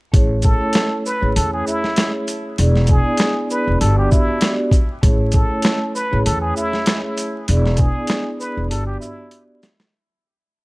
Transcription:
0.12 upright bass A1, vibraphone A3 C#4 E4 G#4 C#5, kick, closed hi-hat
0.42 muted trumpet A4, kick, closed hi-hat, shaker
0.59 vibraphone A3 C#4 E4 A4 C#5
0.73 snare, closed hi-hat
1.06 muted trumpet B4, shaker
1.20 upright bass A1, vibraphone A3 C#4 E4 G#4 C#5
1.36 upright bass E2, muted trumpet A4, closed hi-hat
1.53 muted trumpet G#4
1.67 muted trumpet E4, shaker
1.84 snare
1.96 snare, closed hi-hat
2.28 closed hi-hat, shaker
2.58 upright bass E1, vibraphone B3 D4 E4 G#4 D5, closed hi-hat
2.76 snare
2.87 muted trumpet G#4, kick, closed hi-hat, shaker
3.04 vibraphone B3 D4 E4 G#4 D5
3.17 snare, closed hi-hat
3.50 muted trumpet B4, shaker
3.67 upright bass E1
3.79 upright bass G1, vibraphone B3 D4 F#4 G4 D5, muted trumpet A4, closed hi-hat
3.99 muted trumpet G4
4.11 muted trumpet E4, kick, shaker
4.26 vibraphone B3 D4 F#4 G4 D5
4.41 snare, closed hi-hat
4.71 kick, closed hi-hat, shaker
5.01 upright bass A1, vibraphone A3 C#4 E4 G#4 C#5, kick, closed hi-hat
5.32 muted trumpet A4, kick, closed hi-hat, shaker
5.49 vibraphone A3 C#4 E4 A4 C#5
5.62 snare, closed hi-hat
5.95 muted trumpet B4, shaker
6.10 upright bass A1, vibraphone A3 C#4 E4 G#4 C#5
6.25 upright bass E2, muted trumpet A4, closed hi-hat
6.41 muted trumpet G#4
6.57 muted trumpet E4, shaker
6.73 snare
6.86 snare, closed hi-hat
7.18 closed hi-hat, shaker
7.48 upright bass E1, vibraphone B3 D4 E4 G#4 D5, closed hi-hat
7.66 snare
7.77 muted trumpet G#4, kick, closed hi-hat, shaker
7.94 vibraphone B3 D4 E4 G#4 D5
8.07 snare, closed hi-hat
8.39 muted trumpet B4, shaker
8.57 upright bass E1
8.68 upright bass G1, vibraphone B3 D4 F#4 G4 D5, muted trumpet A4, closed hi-hat
8.86 muted trumpet G4
9.00 muted trumpet E4, shaker
9.16 vibraphone B3 D4 F#4 G4 D5
9.31 closed hi-hat
9.63 snare, closed hi-hat, shaker
9.80 snare

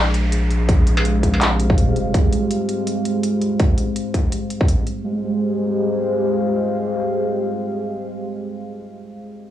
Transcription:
Already playing: sub bass A#1, ambient pad G#3 G4 C5 F5, downlifter
0.14 closed hi-hat
0.32 closed hi-hat
0.51 closed hi-hat
0.69 kick, closed hi-hat
0.87 closed hi-hat
0.97 struck metal
1.05 closed hi-hat
1.23 sub bass A#1, kick, closed hi-hat
1.34 struck metal
1.42 clap, closed hi-hat
1.60 closed hi-hat
1.70 kick
1.78 sub bass D#1, closed hi-hat
1.96 sub bass F1, closed hi-hat
2.14 kick, closed hi-hat
2.32 closed hi-hat
2.51 closed hi-hat
2.69 closed hi-hat
2.87 closed hi-hat
3.05 closed hi-hat
3.23 closed hi-hat
3.41 closed hi-hat
3.60 kick, closed hi-hat
3.78 closed hi-hat
3.96 closed hi-hat
4.14 kick, closed hi-hat
4.32 closed hi-hat
4.50 closed hi-hat
4.61 kick
4.69 closed hi-hat
4.87 closed hi-hat
5.05 ambient pad G#3
5.11 ambient pad G4
5.17 ambient pad C5
5.22 ambient pad F5

